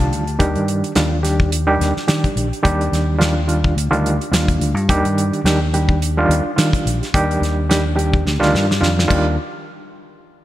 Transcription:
Already playing: D#3 G3 D4 F4 A5
0.00 kick, closed hi-hat
0.11 D2, closed hi-hat
0.27 D4 G4, closed hi-hat
0.39 D#2 D#3 G3 D4 G4, kick, closed hi-hat
0.55 G2, closed hi-hat
0.68 closed hi-hat
0.84 closed hi-hat
0.95 D#2 D#3 G3 D4 F4, snare, closed hi-hat
1.11 D4 F4
1.23 D#3 G3 D4 G4, snare, closed hi-hat
1.40 kick
1.52 D4 F4, closed hi-hat
1.67 D#3 G3 D4 G4
1.80 D#2, snare, closed hi-hat
1.96 D4 F4, snare
2.08 D#3 G3 D4 G4, snare, closed hi-hat
2.24 muted fingered electric bass stroke, kick, closed hi-hat
2.36 A#1, closed hi-hat
2.51 D4 G4, closed hi-hat
2.63 D#2 D#3 G3 D4 G4, kick, closed hi-hat
2.81 closed hi-hat
2.92 D#2, snare, closed hi-hat
3.19 D#3 G3 D4 F4, snare, closed hi-hat
3.35 D4 F4
3.47 D#3 G3 D4 F4, closed hi-hat
3.64 kick
3.76 D2 D4 F4, closed hi-hat
3.90 D2 D#3 G3 D4 F4, closed hi-hat
4.06 closed hi-hat
4.19 D4 G4, closed hi-hat
4.32 D#2 D#3 G3 D4 F4, snare, closed hi-hat
4.48 kick, closed hi-hat
4.59 D2, closed hi-hat
4.74 G2 D4 F4, closed hi-hat
4.89 D#2 D#3 G3 D4 G4, kick, closed hi-hat
5.03 G2, closed hi-hat
5.18 closed hi-hat
5.33 closed hi-hat
5.44 D#2 D#3 G3 D4 G4, snare, closed hi-hat
5.73 D#3 G3 D4 G4, closed hi-hat
5.89 kick
6.02 D4 G4, closed hi-hat
6.17 D#3 G3 D4 F4
6.29 D#2, closed hi-hat
6.45 D4 F4
6.56 D#3 G3 D4 F4, snare, closed hi-hat
6.73 muted fingered electric bass stroke, kick, closed hi-hat
6.86 A#1, closed hi-hat
7.02 D4 G4, snare, closed hi-hat
7.14 D#2 D#3 G3 D4 G4, kick, closed hi-hat
7.31 closed hi-hat
7.41 D#2, snare, closed hi-hat
7.69 D#3 G3 D4 G4, snare, closed hi-hat
7.85 D4 F4
7.96 D#3 G3 D4 G4, closed hi-hat
8.13 kick
8.25 D2 D4 G4, snare
8.40 D2 D#3 G3 D4 F4, snare
8.54 G2, snare
8.68 D4 G4, snare
8.81 F2 D#3 G3 D4 F4, snare
8.99 snare
9.08 D#2 D#3 G3 D4 F4, kick, crash

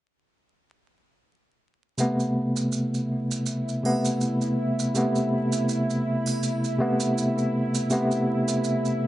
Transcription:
1.98 C3 A3 B3 E4, maracas
2.20 maracas
2.56 maracas
2.72 maracas
2.94 maracas
3.31 maracas
3.46 maracas
3.69 maracas
3.84 C3 A3 B3, triangle
4.05 maracas
4.21 maracas
4.41 maracas
4.79 maracas
4.95 C3 A3 B3, maracas
5.16 maracas
5.52 maracas
5.69 maracas
5.90 maracas
6.26 triangle, maracas
6.43 maracas
6.64 maracas
6.79 C3 A3 B3
7.00 maracas
7.18 maracas
7.38 maracas
7.75 maracas
7.90 C3 A3 B3, maracas
8.11 maracas
8.48 maracas
8.64 maracas
8.85 maracas

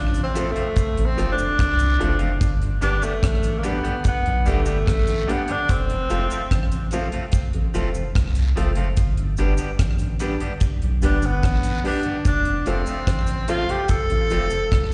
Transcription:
Already playing: A1 D4
0.14 F2 C3, closed hi-hat, cabasa
0.23 C4
0.35 F3 A3 C4 F4 A4 C5, closed hi-hat, cabasa
0.51 A3
0.56 F2 C3 F3 A3 C4 F4, closed hi-hat
0.76 kick, closed hi-hat, cabasa
0.97 A1 F2 C3 A4 C5, closed hi-hat
1.05 C4
1.17 F1 F3 A3 C4 F4 A4 C5, closed hi-hat, cabasa
1.32 D4
1.38 F2 C3, closed hi-hat, cabasa
1.59 C2, kick, cross-stick, closed hi-hat, long guiro
1.79 F2 C3, closed hi-hat, cabasa
1.99 F#1 F3 A3 C4 F4 A4 C5, closed hi-hat
2.19 F2 C3 F3 A3 C4 F4, closed hi-hat
2.41 G1, kick, closed hi-hat, cabasa
2.62 G2 D3, closed hi-hat
2.81 G1 G3 B3 D4 G4 B4, closed hi-hat, cabasa
3.01 G3 A3 B3 D4 G4, closed hi-hat, cabasa
3.23 A1, kick, cross-stick, closed hi-hat
3.43 G2 D3, closed hi-hat, cabasa
3.58 A#3
3.63 G3 B3 D4 G4 B4, closed hi-hat, cabasa
3.84 G2 D3 G3 B3 D4 G4, closed hi-hat
4.04 B3, kick, closed hi-hat, cabasa
4.26 B1 G2 D3, closed hi-hat
4.45 G1 G3 A3 B3 D4 G4 B4, closed hi-hat, cabasa
4.66 G2 D3 G3 B3 D4 G4, closed hi-hat, cabasa
4.86 A1, kick, cross-stick, closed hi-hat, long guiro
5.07 G2 D3, closed hi-hat, cabasa
5.27 G3 B3 D4 G4 B4, closed hi-hat
5.48 G2 D3 G3 B3 D4 G4, closed hi-hat
5.52 D4
5.69 F1 C4, kick, closed hi-hat, cabasa
5.90 F2 C3, closed hi-hat
6.10 F1 F3 A3 C4 F4 A4 C5, closed hi-hat, cabasa
6.30 F3 A3 C4 F4, closed hi-hat, cabasa
6.51 A1, kick, cross-stick, closed hi-hat
6.72 F2 C3, closed hi-hat, cabasa
6.91 F3 A3 C4 F4 A4 C5, closed hi-hat, cabasa
7.12 F2 C3 F3 A3 C4 F4, closed hi-hat
7.32 kick, closed hi-hat, cabasa
7.53 A1 F2 C3 A4 C5, closed hi-hat
7.74 F1 F3 A3 C4 F4 A4 C5, closed hi-hat, cabasa
7.94 F2 C3, closed hi-hat, cabasa
8.15 C2, kick, cross-stick, closed hi-hat, long guiro
8.35 F2 C3, closed hi-hat, cabasa
8.56 F#1 F3 A3 C4 F4 A4 C5, closed hi-hat
8.75 F2 C3 F3 A3 C4 F4, closed hi-hat
8.97 G1, kick, closed hi-hat, cabasa
9.17 G2 D3, closed hi-hat
9.37 G1 G3 B3 D4 G4 B4, closed hi-hat, cabasa
9.57 G3 B3 D4 G4, closed hi-hat, cabasa
9.79 A1, kick, cross-stick, closed hi-hat
9.99 G2 D3, closed hi-hat, cabasa
10.19 G3 B3 D4 G4 B4, closed hi-hat, cabasa
10.40 G2 D3 G3 B3 D4 G4, closed hi-hat
10.60 kick, closed hi-hat, cabasa
10.82 B1 G2 D3, closed hi-hat
11.02 G1 G3 B3 D4 G4 B4, closed hi-hat, cabasa
11.22 G2 D3 B3, closed hi-hat, cabasa
11.43 A1, kick, cross-stick, closed hi-hat, long guiro
11.63 G2 D3, closed hi-hat, cabasa
11.84 G3 B3 D4 G4 B4, open hi-hat
12.03 G2 D3 G3 B3 D4 G4, closed hi-hat
12.25 F1 D4, kick, closed hi-hat, cabasa
12.45 F2 C3, closed hi-hat
12.66 F1 F3 A3 C4 F4 A4 C5, closed hi-hat, cabasa
12.86 F3 A3 C4 F4, closed hi-hat, cabasa
13.07 A1, kick, cross-stick, closed hi-hat
13.27 F2 C3, closed hi-hat, cabasa
13.48 F3 A3 C4 F4 A4 C5, closed hi-hat, cabasa
13.69 F2 C3 F3 A3 C4 F4 G4, closed hi-hat
13.88 A4, kick, closed hi-hat, cabasa
14.10 A1 F2 C3 A4 C5, closed hi-hat
14.30 F1 F3 A3 C4 F4 A4 C5, closed hi-hat, cabasa
14.50 F2 C3, closed hi-hat, cabasa
14.71 C2, kick, cross-stick, closed hi-hat, long guiro

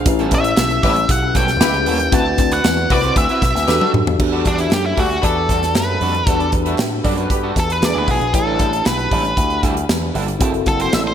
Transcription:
0.05 A1 C#4 E4 G4 B4, muted clean electric guitar stroke, kick, closed hi-hat
0.19 G3 B3 C#4 A4, closed hi-hat
0.31 A1 G3 B3 C#4 A4 E5, kick, closed hi-hat
0.44 muted clean electric guitar stroke, closed hi-hat
0.57 B1, muted clean electric guitar stroke, snare, clap
0.70 muted clean electric guitar stroke, closed hi-hat
0.83 A1 G3 B3 C#4 E4 G4 A4 B4, kick, open hi-hat
0.96 muted clean electric guitar stroke, closed hi-hat
1.09 B1 F#5, kick, closed hi-hat
1.23 muted clean electric guitar stroke
1.35 B1 G3 B3 C#4 A4 G5, kick, snare, closed hi-hat
1.48 muted clean electric guitar stroke, snare, closed hi-hat
1.61 C#2 C#4 E4 G4 B4, snare, clap
1.74 muted clean electric guitar stroke, closed hi-hat
1.86 D#2 G3 B3 C#4 A4, open hi-hat
1.99 muted clean electric guitar stroke, closed hi-hat
2.11 D2 C4 E4 F#4 B4 A5, kick, closed hi-hat
2.25 muted clean electric guitar stroke
2.38 D2, muted clean electric guitar stroke, kick, clap, closed hi-hat
2.51 C4 E4 F#4 B4 F#5, closed hi-hat
2.65 E2, muted clean electric guitar stroke, snare, clap
2.77 muted clean electric guitar stroke, closed hi-hat
2.90 C2 C4 E4 F#4 B4 D5, kick, open hi-hat
3.04 C4 E4 F#4 C5, closed hi-hat
3.16 D2 E5, kick, closed hi-hat
3.29 C4 E4 F#4 B4, closed hi-hat
3.42 B1, muted clean electric guitar stroke, kick, snare, closed hi-hat
3.55 D2, muted clean electric guitar stroke, snare, closed hi-hat
3.67 E2 B3 D4 F#4 G4 A4 B4, muted clean electric guitar stroke, snare, clap
3.81 G3 D4 F#4 A4, high tom
3.93 F#2, muted clean electric guitar stroke, mid tom
4.07 F2, muted clean electric guitar stroke, floor tom
4.19 E2 D4 F#4 G4 A4, muted clean electric guitar stroke, kick, crash
4.32 G3 D4 F#4 A4 B4 D5
4.46 E2 G3 D4 F#4 A4, kick, clap, closed hi-hat
4.57 E4 A4 B4 E5, muted clean electric guitar stroke, closed hi-hat
4.71 F#2 G4, muted clean electric guitar stroke, snare, clap
4.85 E4, muted clean electric guitar stroke
4.96 D2 G3 D4 F#4 A4 B4 D5, kick, open hi-hat
5.11 muted clean electric guitar stroke, closed hi-hat
5.21 E2 A4 B4 D5, kick, closed hi-hat
5.36 muted clean electric guitar stroke
5.49 E2 G3 D4 F#4 A4, kick, snare, closed hi-hat
5.62 muted clean electric guitar stroke, snare, closed hi-hat
5.75 F#2 B4, snare, clap
5.89 muted clean electric guitar stroke
6.01 F2 G3 D4 F#4 A4, open hi-hat
6.14 muted clean electric guitar stroke, closed hi-hat
6.26 E2 G3 D4 F#4 G4 A4 B4, kick, closed hi-hat
6.39 A4 B4 D5, muted clean electric guitar stroke, closed hi-hat
6.52 E2, muted clean electric guitar stroke, kick, clap, closed hi-hat
6.65 G3 D4 F#4 A4 B4 E5, closed hi-hat
6.78 A2, muted clean electric guitar stroke, snare, clap
6.92 muted clean electric guitar stroke
7.04 F#2 G3 D4 F#4 A4 B4 D5, kick, open hi-hat
7.17 G3 D4 F#4 B4, closed hi-hat
7.30 G2 B3 G4 B4, muted clean electric guitar stroke, kick, closed hi-hat
7.43 G3 D4 F#4 A4
7.56 E2 A4, muted clean electric guitar stroke, kick, snare, closed hi-hat
7.69 B4, muted clean electric guitar stroke, closed hi-hat
7.81 E2 D4 F#4 G#4 B4 D5, muted clean electric guitar stroke, snare, clap
7.95 D2 E3 B3 D4 G#4 B4
8.08 B1 E3 B3 D4 G#4, kick, open hi-hat
8.21 A#1, muted clean electric guitar stroke, closed hi-hat
8.33 A1 D4 E4 G4 A4 B4, muted clean electric guitar stroke, kick, closed hi-hat
8.46 G3 D4 E4 A4
8.59 A1 G3 D4 E4 A4, kick, clap, closed hi-hat
8.72 muted clean electric guitar stroke, closed hi-hat
8.86 B1 B4, muted clean electric guitar stroke, snare, clap
8.98 muted clean electric guitar stroke, closed hi-hat
9.11 A1 G3 D4 E4 A4, kick, open hi-hat
9.24 muted clean electric guitar stroke, closed hi-hat
9.37 D2, kick, closed hi-hat
9.50 muted clean electric guitar stroke, closed hi-hat
9.62 D2 G3 D4 E4 A4, kick, snare, closed hi-hat
9.76 muted clean electric guitar stroke, closed hi-hat
9.89 E2, snare, clap
10.02 muted clean electric guitar stroke
10.14 G1 G3 D4 E4 A4, open hi-hat
10.28 muted clean electric guitar stroke, closed hi-hat
10.39 F#1 F#3 C4 E4 F#4 G#4 A4, kick, closed hi-hat
10.48 A4
10.53 muted clean electric guitar stroke, closed hi-hat
10.66 F#1 A4, muted clean electric guitar stroke, kick, clap, closed hi-hat
10.79 F#3 C4 E4 A4 C5, closed hi-hat
10.92 A1 E5, muted clean electric guitar stroke, snare, clap
11.05 C5, muted clean electric guitar stroke

